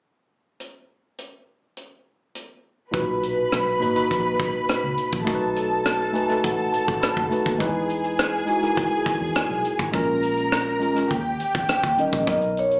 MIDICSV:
0, 0, Header, 1, 7, 480
1, 0, Start_track
1, 0, Key_signature, 5, "major"
1, 0, Tempo, 583658
1, 495, Time_signature, 4, 2, 24, 8
1, 10526, End_track
2, 0, Start_track
2, 0, Title_t, "String section"
2, 0, Program_c, 0, 48
2, 2407, Note_on_c, 0, 71, 74
2, 2409, Note_on_c, 0, 83, 76
2, 4297, Note_off_c, 0, 71, 0
2, 4298, Note_off_c, 0, 83, 0
2, 4336, Note_on_c, 0, 69, 67
2, 4337, Note_on_c, 0, 81, 75
2, 6221, Note_off_c, 0, 69, 0
2, 6222, Note_off_c, 0, 81, 0
2, 6246, Note_on_c, 0, 80, 82
2, 6247, Note_on_c, 0, 68, 72
2, 8136, Note_off_c, 0, 68, 0
2, 8136, Note_off_c, 0, 80, 0
2, 8172, Note_on_c, 0, 70, 70
2, 8172, Note_on_c, 0, 82, 67
2, 9112, Note_off_c, 0, 82, 0
2, 9113, Note_off_c, 0, 70, 0
2, 9121, Note_on_c, 0, 79, 74
2, 9124, Note_on_c, 0, 67, 68
2, 10067, Note_off_c, 0, 79, 0
2, 10068, Note_off_c, 0, 67, 0
2, 10526, End_track
3, 0, Start_track
3, 0, Title_t, "Vibraphone"
3, 0, Program_c, 1, 11
3, 9633, Note_on_c, 1, 79, 80
3, 9866, Note_on_c, 1, 75, 77
3, 9869, Note_off_c, 1, 79, 0
3, 10082, Note_off_c, 1, 75, 0
3, 10111, Note_on_c, 1, 75, 89
3, 10348, Note_off_c, 1, 75, 0
3, 10355, Note_on_c, 1, 73, 83
3, 10526, Note_off_c, 1, 73, 0
3, 10526, End_track
4, 0, Start_track
4, 0, Title_t, "Tine electric piano"
4, 0, Program_c, 2, 4
4, 2396, Note_on_c, 2, 46, 86
4, 2406, Note_on_c, 2, 63, 71
4, 2415, Note_on_c, 2, 66, 82
4, 2422, Note_on_c, 2, 71, 104
4, 2582, Control_c, 2, 64, 127
4, 3066, Note_off_c, 2, 46, 0
4, 3071, Note_off_c, 2, 63, 0
4, 3075, Note_off_c, 2, 66, 0
4, 3079, Note_off_c, 2, 71, 0
4, 3121, Note_on_c, 2, 58, 62
4, 3130, Note_on_c, 2, 63, 70
4, 3139, Note_on_c, 2, 66, 65
4, 3148, Note_on_c, 2, 71, 83
4, 3238, Note_off_c, 2, 58, 0
4, 3239, Note_off_c, 2, 63, 0
4, 3239, Note_on_c, 2, 46, 55
4, 3246, Note_off_c, 2, 66, 0
4, 3249, Note_on_c, 2, 63, 58
4, 3251, Note_off_c, 2, 71, 0
4, 3257, Note_on_c, 2, 66, 58
4, 3268, Note_on_c, 2, 71, 65
4, 4127, Note_off_c, 2, 46, 0
4, 4132, Note_off_c, 2, 63, 0
4, 4136, Note_off_c, 2, 66, 0
4, 4142, Note_off_c, 2, 71, 0
4, 4316, Note_on_c, 2, 57, 86
4, 4328, Note_on_c, 2, 63, 82
4, 4335, Note_on_c, 2, 66, 84
4, 4343, Control_c, 2, 64, 0
4, 4343, Note_on_c, 2, 70, 75
4, 4392, Note_off_c, 2, 70, 0
4, 4399, Note_on_c, 2, 71, 102
4, 4510, Control_c, 2, 64, 127
4, 4985, Note_off_c, 2, 57, 0
4, 4991, Note_off_c, 2, 63, 0
4, 4995, Note_off_c, 2, 66, 0
4, 5027, Note_off_c, 2, 71, 0
4, 5036, Note_on_c, 2, 57, 73
4, 5044, Note_on_c, 2, 63, 69
4, 5049, Note_on_c, 2, 80, 60
4, 5054, Note_on_c, 2, 66, 65
4, 5064, Note_on_c, 2, 71, 83
4, 5153, Note_off_c, 2, 57, 0
4, 5159, Note_off_c, 2, 63, 0
4, 5163, Note_off_c, 2, 66, 0
4, 5163, Note_on_c, 2, 57, 61
4, 5169, Note_off_c, 2, 71, 0
4, 5172, Note_on_c, 2, 63, 55
4, 5180, Note_on_c, 2, 66, 55
4, 5191, Note_on_c, 2, 71, 72
4, 5274, Note_off_c, 2, 80, 0
4, 5297, Note_on_c, 2, 78, 64
4, 5518, Note_off_c, 2, 78, 0
4, 5531, Note_on_c, 2, 81, 64
4, 5755, Note_off_c, 2, 81, 0
4, 5772, Note_on_c, 2, 83, 62
4, 5939, Note_off_c, 2, 57, 0
4, 5943, Note_off_c, 2, 63, 0
4, 5947, Note_off_c, 2, 66, 0
4, 5953, Note_off_c, 2, 71, 0
4, 5999, Note_on_c, 2, 57, 71
4, 6011, Note_on_c, 2, 63, 62
4, 6018, Note_on_c, 2, 66, 67
4, 6027, Note_on_c, 2, 71, 80
4, 6220, Note_off_c, 2, 83, 0
4, 6226, Note_off_c, 2, 57, 0
4, 6232, Note_off_c, 2, 63, 0
4, 6236, Note_off_c, 2, 66, 0
4, 6238, Note_on_c, 2, 56, 97
4, 6240, Note_off_c, 2, 71, 0
4, 6247, Note_on_c, 2, 63, 73
4, 6256, Note_on_c, 2, 64, 82
4, 6265, Control_c, 2, 64, 0
4, 6265, Note_on_c, 2, 71, 95
4, 6429, Control_c, 2, 64, 127
4, 6906, Note_off_c, 2, 56, 0
4, 6910, Note_off_c, 2, 63, 0
4, 6915, Note_off_c, 2, 64, 0
4, 6920, Note_off_c, 2, 71, 0
4, 6953, Note_on_c, 2, 56, 74
4, 6962, Note_on_c, 2, 63, 61
4, 6971, Note_on_c, 2, 64, 69
4, 6983, Note_on_c, 2, 66, 73
4, 7062, Note_off_c, 2, 56, 0
4, 7071, Note_off_c, 2, 63, 0
4, 7072, Note_on_c, 2, 56, 65
4, 7081, Note_on_c, 2, 63, 56
4, 7082, Note_off_c, 2, 64, 0
4, 7088, Note_off_c, 2, 66, 0
4, 7092, Note_on_c, 2, 64, 62
4, 7100, Note_on_c, 2, 70, 61
4, 7963, Note_off_c, 2, 56, 0
4, 7967, Note_off_c, 2, 63, 0
4, 7973, Note_off_c, 2, 64, 0
4, 7977, Note_off_c, 2, 70, 0
4, 8155, Note_on_c, 2, 56, 80
4, 8164, Note_on_c, 2, 61, 78
4, 8172, Note_on_c, 2, 65, 80
4, 8182, Note_on_c, 2, 70, 104
4, 8184, Control_c, 2, 64, 0
4, 8318, Control_c, 2, 64, 127
4, 8824, Note_off_c, 2, 56, 0
4, 8829, Note_off_c, 2, 61, 0
4, 8833, Note_off_c, 2, 65, 0
4, 8838, Note_off_c, 2, 70, 0
4, 8879, Note_on_c, 2, 56, 71
4, 8887, Note_on_c, 2, 61, 61
4, 8896, Note_on_c, 2, 65, 64
4, 8905, Note_on_c, 2, 70, 72
4, 8991, Note_off_c, 2, 56, 0
4, 9000, Note_off_c, 2, 61, 0
4, 9001, Note_on_c, 2, 56, 63
4, 9004, Note_off_c, 2, 65, 0
4, 9008, Note_off_c, 2, 70, 0
4, 9008, Note_on_c, 2, 61, 56
4, 9018, Note_on_c, 2, 65, 54
4, 9028, Note_on_c, 2, 70, 64
4, 9127, Note_off_c, 2, 56, 0
4, 9130, Note_off_c, 2, 61, 0
4, 9135, Note_off_c, 2, 65, 0
4, 9140, Note_off_c, 2, 70, 0
4, 9143, Control_c, 2, 64, 0
4, 9298, Control_c, 2, 64, 127
4, 9841, Note_on_c, 2, 55, 64
4, 9852, Note_on_c, 2, 61, 62
4, 9858, Note_on_c, 2, 63, 61
4, 9868, Note_on_c, 2, 70, 67
4, 10066, Note_off_c, 2, 55, 0
4, 10072, Note_off_c, 2, 61, 0
4, 10075, Note_off_c, 2, 63, 0
4, 10080, Note_off_c, 2, 70, 0
4, 10082, Note_on_c, 2, 54, 67
4, 10091, Note_on_c, 2, 59, 69
4, 10099, Note_on_c, 2, 63, 67
4, 10102, Control_c, 2, 64, 0
4, 10110, Note_on_c, 2, 70, 82
4, 10266, Control_c, 2, 64, 127
4, 10526, Note_off_c, 2, 54, 0
4, 10526, Note_off_c, 2, 59, 0
4, 10526, Note_off_c, 2, 63, 0
4, 10526, Note_off_c, 2, 70, 0
4, 10526, End_track
5, 0, Start_track
5, 0, Title_t, "Fingered electric bass"
5, 0, Program_c, 3, 33
5, 2417, Note_on_c, 3, 35, 78
5, 2814, Note_off_c, 3, 35, 0
5, 2902, Note_on_c, 3, 35, 78
5, 3097, Note_off_c, 3, 35, 0
5, 3143, Note_on_c, 3, 32, 75
5, 3239, Note_off_c, 3, 32, 0
5, 3381, Note_on_c, 3, 34, 72
5, 3577, Note_off_c, 3, 34, 0
5, 3617, Note_on_c, 3, 35, 75
5, 3715, Note_off_c, 3, 35, 0
5, 3979, Note_on_c, 3, 37, 75
5, 4076, Note_off_c, 3, 37, 0
5, 4217, Note_on_c, 3, 34, 71
5, 4315, Note_off_c, 3, 34, 0
5, 4337, Note_on_c, 3, 35, 88
5, 5262, Note_off_c, 3, 35, 0
5, 5302, Note_on_c, 3, 33, 75
5, 5497, Note_off_c, 3, 33, 0
5, 5660, Note_on_c, 3, 32, 83
5, 5757, Note_off_c, 3, 32, 0
5, 5898, Note_on_c, 3, 30, 78
5, 5996, Note_off_c, 3, 30, 0
5, 6135, Note_on_c, 3, 39, 85
5, 6234, Note_off_c, 3, 39, 0
5, 6255, Note_on_c, 3, 40, 100
5, 7181, Note_off_c, 3, 40, 0
5, 7571, Note_on_c, 3, 40, 77
5, 7671, Note_off_c, 3, 40, 0
5, 7812, Note_on_c, 3, 35, 70
5, 7912, Note_off_c, 3, 35, 0
5, 8056, Note_on_c, 3, 32, 69
5, 8154, Note_off_c, 3, 32, 0
5, 8175, Note_on_c, 3, 34, 88
5, 9101, Note_off_c, 3, 34, 0
5, 9136, Note_on_c, 3, 39, 82
5, 9333, Note_off_c, 3, 39, 0
5, 9500, Note_on_c, 3, 40, 76
5, 9596, Note_off_c, 3, 40, 0
5, 9735, Note_on_c, 3, 39, 75
5, 9834, Note_off_c, 3, 39, 0
5, 9976, Note_on_c, 3, 34, 68
5, 10074, Note_off_c, 3, 34, 0
5, 10095, Note_on_c, 3, 35, 82
5, 10492, Note_off_c, 3, 35, 0
5, 10526, End_track
6, 0, Start_track
6, 0, Title_t, "Muted fingered electric bass strokes"
6, 3864, Note_on_c, 9, 29, 35
6, 3947, Note_off_c, 9, 29, 0
6, 5776, Note_on_c, 9, 29, 38
6, 5858, Note_off_c, 9, 29, 0
6, 7453, Note_on_c, 9, 29, 36
6, 7535, Note_off_c, 9, 29, 0
6, 7690, Note_on_c, 9, 29, 38
6, 7772, Note_off_c, 9, 29, 0
6, 9610, Note_on_c, 9, 29, 36
6, 9692, Note_off_c, 9, 29, 0
6, 10526, End_track
7, 0, Start_track
7, 0, Title_t, "Drums"
7, 493, Note_on_c, 9, 42, 51
7, 576, Note_off_c, 9, 42, 0
7, 974, Note_on_c, 9, 42, 45
7, 1057, Note_off_c, 9, 42, 0
7, 1455, Note_on_c, 9, 42, 45
7, 1537, Note_off_c, 9, 42, 0
7, 1934, Note_on_c, 9, 42, 54
7, 2016, Note_off_c, 9, 42, 0
7, 2416, Note_on_c, 9, 36, 95
7, 2417, Note_on_c, 9, 42, 69
7, 2498, Note_off_c, 9, 36, 0
7, 2499, Note_off_c, 9, 42, 0
7, 2658, Note_on_c, 9, 42, 68
7, 2740, Note_off_c, 9, 42, 0
7, 2898, Note_on_c, 9, 37, 82
7, 2898, Note_on_c, 9, 42, 69
7, 2980, Note_off_c, 9, 37, 0
7, 2980, Note_off_c, 9, 42, 0
7, 3140, Note_on_c, 9, 42, 47
7, 3222, Note_off_c, 9, 42, 0
7, 3256, Note_on_c, 9, 42, 55
7, 3338, Note_off_c, 9, 42, 0
7, 3379, Note_on_c, 9, 36, 72
7, 3382, Note_on_c, 9, 42, 76
7, 3462, Note_off_c, 9, 36, 0
7, 3464, Note_off_c, 9, 42, 0
7, 3615, Note_on_c, 9, 36, 80
7, 3618, Note_on_c, 9, 42, 79
7, 3698, Note_off_c, 9, 36, 0
7, 3700, Note_off_c, 9, 42, 0
7, 3855, Note_on_c, 9, 42, 77
7, 3861, Note_on_c, 9, 37, 90
7, 3937, Note_off_c, 9, 42, 0
7, 3943, Note_off_c, 9, 37, 0
7, 4093, Note_on_c, 9, 42, 62
7, 4175, Note_off_c, 9, 42, 0
7, 4216, Note_on_c, 9, 36, 79
7, 4299, Note_off_c, 9, 36, 0
7, 4333, Note_on_c, 9, 42, 70
7, 4335, Note_on_c, 9, 36, 99
7, 4415, Note_off_c, 9, 42, 0
7, 4417, Note_off_c, 9, 36, 0
7, 4576, Note_on_c, 9, 42, 72
7, 4658, Note_off_c, 9, 42, 0
7, 4817, Note_on_c, 9, 37, 90
7, 4817, Note_on_c, 9, 42, 71
7, 4899, Note_off_c, 9, 37, 0
7, 4899, Note_off_c, 9, 42, 0
7, 5058, Note_on_c, 9, 42, 50
7, 5140, Note_off_c, 9, 42, 0
7, 5175, Note_on_c, 9, 42, 48
7, 5181, Note_on_c, 9, 37, 31
7, 5258, Note_off_c, 9, 42, 0
7, 5264, Note_off_c, 9, 37, 0
7, 5297, Note_on_c, 9, 36, 73
7, 5298, Note_on_c, 9, 42, 83
7, 5380, Note_off_c, 9, 36, 0
7, 5380, Note_off_c, 9, 42, 0
7, 5539, Note_on_c, 9, 42, 69
7, 5621, Note_off_c, 9, 42, 0
7, 5660, Note_on_c, 9, 36, 81
7, 5742, Note_off_c, 9, 36, 0
7, 5778, Note_on_c, 9, 42, 83
7, 5784, Note_on_c, 9, 37, 90
7, 5860, Note_off_c, 9, 42, 0
7, 5866, Note_off_c, 9, 37, 0
7, 5895, Note_on_c, 9, 36, 81
7, 5978, Note_off_c, 9, 36, 0
7, 6018, Note_on_c, 9, 42, 58
7, 6100, Note_off_c, 9, 42, 0
7, 6135, Note_on_c, 9, 36, 81
7, 6218, Note_off_c, 9, 36, 0
7, 6253, Note_on_c, 9, 36, 96
7, 6257, Note_on_c, 9, 42, 71
7, 6336, Note_off_c, 9, 36, 0
7, 6339, Note_off_c, 9, 42, 0
7, 6494, Note_on_c, 9, 42, 62
7, 6576, Note_off_c, 9, 42, 0
7, 6614, Note_on_c, 9, 42, 44
7, 6696, Note_off_c, 9, 42, 0
7, 6736, Note_on_c, 9, 42, 69
7, 6737, Note_on_c, 9, 37, 96
7, 6819, Note_off_c, 9, 37, 0
7, 6819, Note_off_c, 9, 42, 0
7, 6974, Note_on_c, 9, 42, 49
7, 7056, Note_off_c, 9, 42, 0
7, 7099, Note_on_c, 9, 37, 30
7, 7181, Note_off_c, 9, 37, 0
7, 7215, Note_on_c, 9, 36, 79
7, 7215, Note_on_c, 9, 42, 76
7, 7297, Note_off_c, 9, 36, 0
7, 7297, Note_off_c, 9, 42, 0
7, 7452, Note_on_c, 9, 36, 75
7, 7457, Note_on_c, 9, 42, 77
7, 7534, Note_off_c, 9, 36, 0
7, 7539, Note_off_c, 9, 42, 0
7, 7691, Note_on_c, 9, 42, 85
7, 7697, Note_on_c, 9, 37, 85
7, 7774, Note_off_c, 9, 42, 0
7, 7780, Note_off_c, 9, 37, 0
7, 7933, Note_on_c, 9, 42, 63
7, 8016, Note_off_c, 9, 42, 0
7, 8054, Note_on_c, 9, 36, 82
7, 8136, Note_off_c, 9, 36, 0
7, 8171, Note_on_c, 9, 36, 91
7, 8172, Note_on_c, 9, 42, 72
7, 8253, Note_off_c, 9, 36, 0
7, 8254, Note_off_c, 9, 42, 0
7, 8410, Note_on_c, 9, 42, 67
7, 8492, Note_off_c, 9, 42, 0
7, 8531, Note_on_c, 9, 42, 49
7, 8613, Note_off_c, 9, 42, 0
7, 8654, Note_on_c, 9, 42, 69
7, 8655, Note_on_c, 9, 37, 95
7, 8736, Note_off_c, 9, 42, 0
7, 8737, Note_off_c, 9, 37, 0
7, 8892, Note_on_c, 9, 42, 49
7, 8974, Note_off_c, 9, 42, 0
7, 9013, Note_on_c, 9, 42, 52
7, 9019, Note_on_c, 9, 37, 31
7, 9095, Note_off_c, 9, 42, 0
7, 9101, Note_off_c, 9, 37, 0
7, 9135, Note_on_c, 9, 36, 68
7, 9136, Note_on_c, 9, 42, 76
7, 9217, Note_off_c, 9, 36, 0
7, 9218, Note_off_c, 9, 42, 0
7, 9374, Note_on_c, 9, 42, 68
7, 9457, Note_off_c, 9, 42, 0
7, 9497, Note_on_c, 9, 36, 85
7, 9579, Note_off_c, 9, 36, 0
7, 9610, Note_on_c, 9, 42, 82
7, 9616, Note_on_c, 9, 37, 93
7, 9693, Note_off_c, 9, 42, 0
7, 9698, Note_off_c, 9, 37, 0
7, 9733, Note_on_c, 9, 36, 79
7, 9816, Note_off_c, 9, 36, 0
7, 9853, Note_on_c, 9, 42, 67
7, 9936, Note_off_c, 9, 42, 0
7, 9974, Note_on_c, 9, 36, 76
7, 10057, Note_off_c, 9, 36, 0
7, 10094, Note_on_c, 9, 36, 99
7, 10095, Note_on_c, 9, 42, 62
7, 10176, Note_off_c, 9, 36, 0
7, 10177, Note_off_c, 9, 42, 0
7, 10211, Note_on_c, 9, 42, 30
7, 10293, Note_off_c, 9, 42, 0
7, 10338, Note_on_c, 9, 42, 63
7, 10420, Note_off_c, 9, 42, 0
7, 10456, Note_on_c, 9, 42, 44
7, 10526, Note_off_c, 9, 42, 0
7, 10526, End_track
0, 0, End_of_file